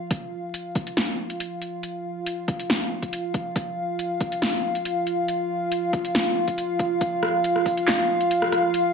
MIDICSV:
0, 0, Header, 1, 3, 480
1, 0, Start_track
1, 0, Tempo, 431655
1, 118, Time_signature, 4, 2, 24, 8
1, 9933, End_track
2, 0, Start_track
2, 0, Title_t, "Analog synth pad"
2, 0, Program_c, 0, 89
2, 115, Note_on_c, 0, 65, 80
2, 115, Note_on_c, 0, 77, 79
2, 9933, Note_off_c, 0, 65, 0
2, 9933, Note_off_c, 0, 77, 0
2, 9933, End_track
3, 0, Start_track
3, 0, Title_t, "Drums"
3, 118, Note_on_c, 9, 36, 113
3, 118, Note_on_c, 9, 42, 75
3, 229, Note_off_c, 9, 36, 0
3, 229, Note_off_c, 9, 42, 0
3, 600, Note_on_c, 9, 42, 80
3, 711, Note_off_c, 9, 42, 0
3, 838, Note_on_c, 9, 36, 100
3, 840, Note_on_c, 9, 42, 51
3, 949, Note_off_c, 9, 36, 0
3, 951, Note_off_c, 9, 42, 0
3, 965, Note_on_c, 9, 42, 50
3, 1076, Note_off_c, 9, 42, 0
3, 1078, Note_on_c, 9, 38, 113
3, 1078, Note_on_c, 9, 42, 77
3, 1190, Note_off_c, 9, 38, 0
3, 1190, Note_off_c, 9, 42, 0
3, 1445, Note_on_c, 9, 42, 51
3, 1556, Note_off_c, 9, 42, 0
3, 1559, Note_on_c, 9, 42, 79
3, 1671, Note_off_c, 9, 42, 0
3, 1797, Note_on_c, 9, 42, 51
3, 1909, Note_off_c, 9, 42, 0
3, 2037, Note_on_c, 9, 42, 74
3, 2149, Note_off_c, 9, 42, 0
3, 2517, Note_on_c, 9, 42, 77
3, 2628, Note_off_c, 9, 42, 0
3, 2758, Note_on_c, 9, 36, 104
3, 2759, Note_on_c, 9, 42, 49
3, 2869, Note_off_c, 9, 36, 0
3, 2870, Note_off_c, 9, 42, 0
3, 2886, Note_on_c, 9, 42, 50
3, 2997, Note_off_c, 9, 42, 0
3, 2999, Note_on_c, 9, 38, 120
3, 2999, Note_on_c, 9, 42, 76
3, 3111, Note_off_c, 9, 38, 0
3, 3111, Note_off_c, 9, 42, 0
3, 3363, Note_on_c, 9, 36, 62
3, 3365, Note_on_c, 9, 42, 50
3, 3475, Note_off_c, 9, 36, 0
3, 3477, Note_off_c, 9, 42, 0
3, 3479, Note_on_c, 9, 42, 77
3, 3591, Note_off_c, 9, 42, 0
3, 3716, Note_on_c, 9, 36, 104
3, 3718, Note_on_c, 9, 42, 49
3, 3828, Note_off_c, 9, 36, 0
3, 3829, Note_off_c, 9, 42, 0
3, 3956, Note_on_c, 9, 36, 122
3, 3957, Note_on_c, 9, 42, 72
3, 4067, Note_off_c, 9, 36, 0
3, 4068, Note_off_c, 9, 42, 0
3, 4437, Note_on_c, 9, 42, 75
3, 4549, Note_off_c, 9, 42, 0
3, 4676, Note_on_c, 9, 36, 110
3, 4678, Note_on_c, 9, 42, 49
3, 4787, Note_off_c, 9, 36, 0
3, 4789, Note_off_c, 9, 42, 0
3, 4804, Note_on_c, 9, 42, 49
3, 4915, Note_off_c, 9, 42, 0
3, 4916, Note_on_c, 9, 38, 121
3, 4916, Note_on_c, 9, 42, 73
3, 5027, Note_off_c, 9, 38, 0
3, 5027, Note_off_c, 9, 42, 0
3, 5283, Note_on_c, 9, 42, 47
3, 5394, Note_off_c, 9, 42, 0
3, 5397, Note_on_c, 9, 42, 76
3, 5508, Note_off_c, 9, 42, 0
3, 5636, Note_on_c, 9, 42, 49
3, 5747, Note_off_c, 9, 42, 0
3, 5876, Note_on_c, 9, 42, 72
3, 5987, Note_off_c, 9, 42, 0
3, 6356, Note_on_c, 9, 42, 76
3, 6467, Note_off_c, 9, 42, 0
3, 6595, Note_on_c, 9, 36, 108
3, 6597, Note_on_c, 9, 42, 47
3, 6706, Note_off_c, 9, 36, 0
3, 6708, Note_off_c, 9, 42, 0
3, 6723, Note_on_c, 9, 42, 48
3, 6835, Note_off_c, 9, 42, 0
3, 6837, Note_on_c, 9, 38, 120
3, 6837, Note_on_c, 9, 42, 73
3, 6948, Note_off_c, 9, 38, 0
3, 6948, Note_off_c, 9, 42, 0
3, 7202, Note_on_c, 9, 36, 62
3, 7203, Note_on_c, 9, 42, 47
3, 7313, Note_off_c, 9, 36, 0
3, 7314, Note_off_c, 9, 42, 0
3, 7316, Note_on_c, 9, 42, 75
3, 7428, Note_off_c, 9, 42, 0
3, 7555, Note_on_c, 9, 36, 109
3, 7557, Note_on_c, 9, 42, 47
3, 7667, Note_off_c, 9, 36, 0
3, 7669, Note_off_c, 9, 42, 0
3, 7795, Note_on_c, 9, 36, 117
3, 7798, Note_on_c, 9, 42, 70
3, 7907, Note_off_c, 9, 36, 0
3, 7909, Note_off_c, 9, 42, 0
3, 8036, Note_on_c, 9, 37, 81
3, 8148, Note_off_c, 9, 37, 0
3, 8276, Note_on_c, 9, 42, 75
3, 8387, Note_off_c, 9, 42, 0
3, 8404, Note_on_c, 9, 37, 54
3, 8515, Note_off_c, 9, 37, 0
3, 8515, Note_on_c, 9, 36, 103
3, 8518, Note_on_c, 9, 46, 91
3, 8626, Note_off_c, 9, 36, 0
3, 8629, Note_off_c, 9, 46, 0
3, 8645, Note_on_c, 9, 42, 49
3, 8756, Note_off_c, 9, 42, 0
3, 8759, Note_on_c, 9, 38, 119
3, 8759, Note_on_c, 9, 39, 82
3, 8759, Note_on_c, 9, 42, 74
3, 8870, Note_off_c, 9, 38, 0
3, 8870, Note_off_c, 9, 39, 0
3, 8870, Note_off_c, 9, 42, 0
3, 9126, Note_on_c, 9, 42, 47
3, 9237, Note_off_c, 9, 42, 0
3, 9239, Note_on_c, 9, 42, 75
3, 9350, Note_off_c, 9, 42, 0
3, 9365, Note_on_c, 9, 37, 82
3, 9476, Note_off_c, 9, 37, 0
3, 9479, Note_on_c, 9, 37, 81
3, 9479, Note_on_c, 9, 42, 49
3, 9590, Note_off_c, 9, 37, 0
3, 9590, Note_off_c, 9, 42, 0
3, 9719, Note_on_c, 9, 42, 75
3, 9830, Note_off_c, 9, 42, 0
3, 9933, End_track
0, 0, End_of_file